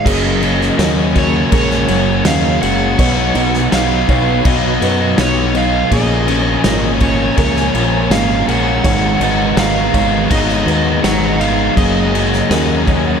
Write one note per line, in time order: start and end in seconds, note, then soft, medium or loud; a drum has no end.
0.05 0.70 F#1 medium
0.05 0.41 F#2 loud
0.05 0.41 C#3 loud
0.05 0.42 F#3 loud
0.05 2.96 F#3 medium
0.05 0.42 A#3 loud
0.05 0.43 C#4 loud
0.05 2.96 F#4 medium
0.05 0.79 G#4 loud
0.05 2.96 G#4 medium
0.05 2.96 A#4 medium
0.05 5.88 C#5 medium
0.05 1.18 D#5 medium
0.05 kick loud
0.05 crash loud
0.05 crash medium
0.42 0.77 F#2 medium
0.42 0.77 C#3 medium
0.42 0.78 F#3 loud
0.42 0.78 A#3 medium
0.42 0.79 C#4 medium
0.42 crash medium
0.61 snare soft
0.78 1.43 D#2 medium
0.78 1.14 F#2 medium
0.78 1.14 C#3 medium
0.78 1.15 F#3 loud
0.78 1.14 A#3 loud
0.78 1.16 C#4 loud
0.78 1.88 F#4 medium
0.78 1.51 A#4 medium
0.78 snare loud
0.78 crash medium
1.15 1.50 F#2 medium
1.15 1.51 C#3 medium
1.15 1.51 F#3 loud
1.15 1.51 A#3 loud
1.15 1.52 C#4 loud
1.15 1.51 C#5 medium
1.15 kick medium
1.15 crash medium
1.51 1.84 A#1 loud
1.51 1.87 F#2 medium
1.51 1.88 C#3 medium
1.51 1.88 F#3 medium
1.51 2.60 G#3 medium
1.51 1.88 A#3 loud
1.51 1.89 C#4 loud
1.51 2.25 A#4 medium
1.51 2.29 C#5 medium
1.51 kick loud
1.51 crash medium
1.71 snare soft
1.88 2.21 F#1 loud
1.88 2.24 F#2 medium
1.88 2.24 C#3 medium
1.88 2.24 F#3 medium
1.88 2.25 A#3 loud
1.88 2.25 C#4 loud
1.88 2.99 F#4 medium
1.88 crash medium
2.25 2.57 D#2 medium
2.25 2.60 F#2 medium
2.25 2.61 C#3 medium
2.25 2.61 F#3 medium
2.25 2.62 A#3 loud
2.25 2.63 C#4 medium
2.25 2.99 D#5 medium
2.25 2.62 F5 medium
2.25 snare loud
2.25 crash medium
2.62 2.94 F#1 medium
2.62 2.96 F#2 medium
2.62 2.96 C#3 medium
2.62 2.97 F#3 medium
2.62 2.98 G#3 medium
2.62 2.97 A#3 loud
2.62 2.99 C#4 medium
2.62 3.73 F#5 loud
2.62 crash medium
2.98 3.31 B1 loud
2.98 3.34 B2 loud
2.98 3.35 F#3 loud
2.98 5.88 B3 medium
2.98 3.35 B3 loud
2.98 3.35 D#4 loud
2.98 5.88 F#4 loud
2.98 5.88 B4 medium
2.98 3.36 C#5 medium
2.98 5.88 D#5 medium
2.98 kick loud
2.98 crash loud
3.35 3.67 B1 loud
3.35 3.71 B2 medium
3.35 3.71 F#3 medium
3.35 3.71 B3 medium
3.35 3.72 D#4 medium
3.35 4.09 D#5 medium
3.35 crash medium
3.54 snare soft
3.72 4.04 B1 medium
3.72 4.07 B2 medium
3.72 4.08 F#3 medium
3.72 4.08 B3 loud
3.72 4.08 D#4 loud
3.72 4.80 F#4 medium
3.72 4.48 F5 loud
3.72 snare loud
3.72 crash loud
4.08 4.40 B1 medium
4.08 4.44 B2 loud
4.08 4.45 F#3 medium
4.08 4.45 B3 loud
4.08 4.45 D#4 loud
4.08 4.82 C#5 medium
4.08 kick medium
4.08 crash medium
4.45 4.77 B1 medium
4.45 4.80 B2 medium
4.45 4.80 F#3 medium
4.45 4.81 B3 loud
4.45 4.81 D#4 medium
4.45 5.20 D#5 medium
4.45 kick loud
4.45 crash medium
4.81 5.14 F#2 loud
4.81 5.16 B2 medium
4.81 5.16 F#3 medium
4.81 5.17 B3 loud
4.81 5.17 D#4 loud
4.81 5.91 F#4 medium
4.81 5.55 B4 medium
4.81 crash medium
5.17 5.82 B1 medium
5.17 5.53 B2 medium
5.17 5.54 F#3 medium
5.17 5.54 B3 medium
5.17 5.55 D#4 loud
5.17 5.57 C#5 medium
5.17 snare loud
5.17 crash loud
5.54 5.89 B2 medium
5.54 5.89 F#3 loud
5.54 5.89 B3 loud
5.54 5.90 D#4 loud
5.54 5.92 D#5 medium
5.54 5.94 F5 loud
5.54 crash medium
5.91 6.56 A#1 loud
5.91 6.27 A#2 medium
5.91 6.27 F3 loud
5.91 8.82 A#3 medium
5.91 6.28 A#3 loud
5.91 6.28 C#4 loud
5.91 6.65 G#4 loud
5.91 8.82 C#5 medium
5.91 7.02 D#5 loud
5.91 8.82 G#5 loud
5.91 13.20 A#5 medium
5.91 kick loud
5.91 crash medium
6.28 6.64 A#2 medium
6.28 6.64 F3 medium
6.28 6.64 A#3 medium
6.28 6.65 C#4 loud
6.28 crash medium
6.64 7.29 G#1 medium
6.64 7.00 A#2 medium
6.64 7.00 F3 loud
6.64 7.01 A#3 loud
6.64 7.01 C#4 loud
6.64 8.48 F4 medium
6.64 7.37 A#4 medium
6.64 snare loud
6.64 crash medium
7.00 7.37 A#2 medium
7.00 7.38 F3 medium
7.00 7.38 A#3 loud
7.00 7.38 C#4 loud
7.00 7.38 C#5 medium
7.00 kick loud
7.00 crash medium
7.37 7.70 C#2 loud
7.37 7.74 A#2 medium
7.37 7.75 F3 medium
7.37 8.47 G#3 medium
7.37 7.76 A#3 loud
7.37 7.76 C#4 loud
7.37 8.12 A#4 medium
7.37 8.14 C#5 medium
7.37 kick loud
7.37 crash medium
7.57 snare soft
7.74 8.06 A#1 medium
7.74 8.12 A#2 medium
7.74 8.12 F3 loud
7.74 8.12 A#3 medium
7.74 8.13 C#4 loud
7.74 crash medium
8.10 8.43 G#1 loud
8.10 8.47 A#2 medium
8.10 8.48 F3 medium
8.10 8.48 A#3 medium
8.10 8.49 C#4 medium
8.10 8.85 D#5 medium
8.10 8.46 F5 loud
8.10 snare loud
8.10 crash medium
8.47 8.80 A#1 medium
8.47 8.83 A#2 medium
8.47 8.83 F3 loud
8.47 8.83 G#3 medium
8.47 8.83 A#3 medium
8.47 8.83 C#4 loud
8.47 9.59 F#5 loud
8.47 crash medium
8.84 9.17 G#1 loud
8.84 9.19 G#2 loud
8.84 9.19 D#3 loud
8.84 11.74 G#3 medium
8.84 9.20 G#3 loud
8.84 9.20 B3 loud
8.84 11.75 D#4 medium
8.84 9.20 D#4 loud
8.84 11.75 F#4 loud
8.84 11.75 B4 medium
8.84 9.21 C#5 medium
8.84 kick loud
8.84 crash medium
9.20 9.53 G#1 medium
9.20 9.56 G#2 medium
9.20 9.56 D#3 medium
9.20 9.57 G#3 medium
9.20 9.57 B3 medium
9.20 9.57 D#4 loud
9.20 9.95 D#5 medium
9.20 crash medium
9.57 9.89 G#1 medium
9.57 9.92 G#2 loud
9.57 9.92 D#3 medium
9.57 9.94 G#3 loud
9.57 9.93 B3 loud
9.57 9.93 D#4 loud
9.57 10.66 F#4 medium
9.57 10.28 F5 loud
9.57 snare loud
9.57 crash medium
9.93 10.26 G#1 medium
9.93 10.29 G#2 medium
9.93 10.29 D#3 loud
9.93 10.29 G#3 loud
9.93 10.30 B3 medium
9.93 10.30 D#4 loud
9.93 10.68 C#5 medium
9.93 kick medium
9.93 crash medium
10.30 10.63 G#1 loud
10.30 10.65 G#2 loud
10.30 10.66 D#3 medium
10.30 10.66 G#3 loud
10.30 10.66 B3 loud
10.30 10.67 D#4 loud
10.30 11.04 D#5 loud
10.30 kick loud
10.30 crash medium
10.49 snare soft
10.66 10.99 D#2 medium
10.66 11.02 G#2 medium
10.66 11.02 D#3 loud
10.66 11.03 G#3 loud
10.66 11.03 B3 loud
10.66 11.03 D#4 medium
10.66 12.49 F#4 medium
10.66 11.40 B4 medium
10.66 crash medium
11.03 11.68 G#1 medium
11.03 11.39 G#2 medium
11.03 11.39 D#3 medium
11.03 11.40 G#3 loud
11.03 11.40 B3 medium
11.03 11.40 D#4 loud
11.03 11.38 C#5 medium
11.03 11.61 F#5 medium
11.03 snare loud
11.03 crash medium
11.40 11.75 G#2 medium
11.40 11.75 D#3 medium
11.40 11.75 G#3 medium
11.40 11.75 B3 medium
11.40 11.76 D#4 medium
11.40 11.77 D#5 medium
11.40 11.77 F5 loud
11.40 crash medium
11.76 12.41 F#1 loud
11.76 12.12 F#2 loud
11.76 12.12 C#3 loud
11.76 13.20 F#3 medium
11.76 12.13 F#3 loud
11.76 12.13 A#3 loud
11.76 13.20 C#4 medium
11.76 12.14 C#4 loud
11.76 12.51 G#4 loud
11.76 13.20 G#4 medium
11.76 13.20 D#5 medium
11.76 13.20 F#5 loud
11.76 kick loud
11.76 crash medium
12.13 12.49 F#2 medium
12.13 12.49 C#3 medium
12.13 12.51 F#3 medium
12.13 12.50 A#3 medium
12.13 12.51 C#4 loud
12.13 crash medium
12.33 snare soft
12.49 13.15 D#2 loud
12.49 12.86 F#2 medium
12.49 12.87 C#3 loud
12.49 12.88 F#3 medium
12.49 12.87 A#3 loud
12.49 12.89 C#4 loud
12.49 13.20 G#4 medium
12.49 13.20 A#4 medium
12.49 snare loud
12.49 crash medium
12.87 13.20 F#2 medium
12.87 13.20 C#3 medium
12.87 13.20 F#3 medium
12.87 13.20 A#3 medium
12.87 13.20 C#4 loud
12.87 kick medium
12.87 crash medium